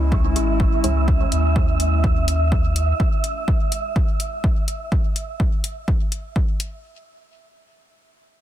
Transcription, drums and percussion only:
0.12 kick loud
0.36 closed hi-hat medium
0.60 kick loud
0.84 closed hi-hat medium
1.08 kick loud
1.32 closed hi-hat medium
1.56 kick loud
1.80 closed hi-hat medium
2.04 kick loud
2.28 closed hi-hat medium
2.52 kick loud
2.76 closed hi-hat medium
3.00 kick loud
3.24 closed hi-hat medium
3.48 kick loud
3.72 closed hi-hat medium
3.96 kick loud
4.20 closed hi-hat medium
4.44 kick loud
4.68 closed hi-hat medium
4.92 kick loud
5.16 closed hi-hat medium
5.40 kick loud
5.64 closed hi-hat medium
5.88 kick loud
6.12 closed hi-hat medium
6.36 kick loud
6.60 closed hi-hat medium

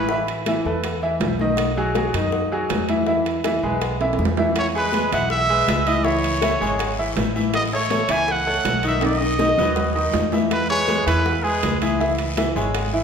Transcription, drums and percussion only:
0.09 high bongo medium
0.27 high bongo soft
0.27 high conga soft
0.27 high timbale medium
0.46 high bongo medium
0.46 high conga medium
0.46 high timbale medium
0.46 low timbale medium
0.66 high bongo soft
0.66 high conga soft
0.84 high bongo medium
0.84 high conga soft
0.84 high timbale medium
1.02 high bongo soft
1.02 high conga soft
1.20 high bongo soft
1.20 low bongo medium
1.20 high conga medium
1.20 high timbale medium
1.20 low timbale medium
1.39 high conga medium
1.57 high bongo medium
1.57 high conga soft
1.57 high timbale loud
1.76 high bongo soft
1.76 high conga soft
1.95 high bongo medium
1.95 high conga loud
1.95 high timbale medium
1.95 low timbale medium
2.14 high bongo soft
2.14 high conga soft
2.14 high timbale medium
2.32 high bongo medium
2.32 high conga soft
2.52 high bongo soft
2.52 high conga soft
2.70 high bongo soft
2.70 low bongo medium
2.70 high conga medium
2.70 high timbale medium
2.70 low timbale medium
2.89 high conga medium
2.89 high timbale medium
3.07 high bongo medium
3.07 high conga soft
3.26 high bongo soft
3.26 high conga soft
3.26 high timbale medium
3.44 high bongo medium
3.44 high conga medium
3.44 high timbale medium
3.44 low timbale medium
3.64 high bongo soft
3.64 high conga soft
3.81 high bongo medium
3.81 high conga soft
3.81 high timbale medium
4.01 high bongo soft
4.01 high conga soft
4.01 high timbale medium
4.13 high timbale medium
4.19 high bongo soft
4.19 low bongo medium
4.19 high conga medium
4.25 low timbale medium
4.37 high conga medium
4.37 low timbale medium
4.56 high bongo medium
4.56 high conga soft
4.56 high timbale medium
4.56 long guiro medium
4.74 high bongo soft
4.74 high conga soft
4.93 high bongo medium
4.93 high conga medium
4.93 high timbale medium
4.93 low timbale medium
4.93 short guiro medium
5.12 high bongo soft
5.12 high conga soft
5.12 high timbale medium
5.12 short guiro medium
5.30 high bongo medium
5.30 high conga soft
5.30 long guiro medium
5.49 high bongo soft
5.68 high bongo soft
5.68 low bongo medium
5.68 high conga medium
5.68 high timbale loud
5.68 low timbale medium
5.68 short guiro medium
5.87 high conga medium
5.87 high timbale medium
5.87 short guiro medium
6.04 high bongo medium
6.04 high conga soft
6.04 long guiro medium
6.23 high bongo soft
6.23 high conga soft
6.23 high timbale medium
6.42 high bongo medium
6.42 high conga medium
6.42 high timbale medium
6.42 low timbale medium
6.42 short guiro medium
6.60 high bongo soft
6.60 high conga soft
6.60 short guiro medium
6.79 high bongo medium
6.79 high conga soft
6.79 high timbale medium
6.79 long guiro medium
6.99 high bongo soft
6.99 high conga soft
7.17 high bongo soft
7.17 low bongo medium
7.17 high conga medium
7.17 high timbale medium
7.17 low timbale medium
7.17 short guiro medium
7.36 high conga medium
7.36 short guiro medium
7.54 high bongo medium
7.54 high timbale medium
7.54 long guiro medium
7.73 high bongo soft
7.73 high conga soft
7.90 high bongo medium
7.90 high conga loud
7.90 high timbale medium
7.90 low timbale medium
7.90 short guiro medium
8.09 high bongo soft
8.09 high conga soft
8.09 high timbale loud
8.09 short guiro medium
8.28 high bongo medium
8.28 high conga soft
8.28 long guiro medium
8.46 high bongo soft
8.46 high conga soft
8.65 high bongo soft
8.65 low bongo medium
8.65 high conga medium
8.65 high timbale medium
8.65 low timbale medium
8.65 short guiro medium
8.83 high timbale medium
8.83 short guiro medium
9.01 high bongo medium
9.01 high timbale medium
9.01 long guiro medium
9.21 high bongo soft
9.21 high conga soft
9.21 high timbale medium
9.39 high bongo medium
9.39 high conga loud
9.39 high timbale medium
9.39 short guiro medium
9.57 high bongo soft
9.57 high conga soft
9.57 low timbale medium
9.57 short guiro medium
9.76 high bongo medium
9.76 high conga soft
9.76 low timbale medium
9.76 long guiro medium
9.95 high bongo soft
9.95 high conga soft
10.13 high bongo soft
10.13 low bongo medium
10.13 high conga medium
10.13 low timbale loud
10.13 short guiro medium
10.32 high conga medium
10.32 low timbale medium
10.32 short guiro medium
10.51 high bongo medium
10.51 high conga soft
10.51 high timbale medium
10.51 long guiro medium
10.70 high bongo soft
10.88 high bongo medium
10.88 high conga loud
10.88 high timbale medium
10.88 low timbale medium
10.88 short guiro medium
11.07 high bongo soft
11.07 high conga soft
11.07 high timbale medium
11.07 short guiro medium
11.26 high bongo medium
11.26 high conga soft
11.26 long guiro medium
11.45 high bongo soft
11.63 high bongo soft
11.63 low bongo medium
11.63 high conga medium
11.63 high timbale medium
11.63 low timbale medium
11.63 short guiro medium
11.82 high conga medium
11.82 high timbale medium
11.82 short guiro medium
12.00 high bongo medium
12.00 high conga soft
12.00 long guiro medium
12.19 high bongo soft
12.19 high conga soft
12.19 high timbale medium
12.37 high bongo medium
12.37 high conga loud
12.37 high timbale medium
12.37 low timbale medium
12.37 short guiro medium
12.56 high bongo soft
12.56 high conga soft
12.56 short guiro medium
12.75 high bongo medium
12.75 high conga soft
12.75 high timbale medium
12.75 long guiro medium
12.93 high bongo soft

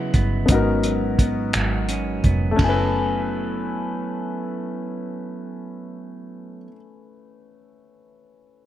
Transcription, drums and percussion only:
0.14 kick medium
0.14 closed hi-hat soft
0.48 kick loud
0.48 closed hi-hat medium
0.84 closed hi-hat soft
1.19 kick medium
1.19 closed hi-hat soft
1.53 finger snap medium
1.53 closed hi-hat medium
1.89 closed hi-hat soft
2.24 kick medium
2.24 closed hi-hat soft
2.59 kick medium
2.59 ride medium

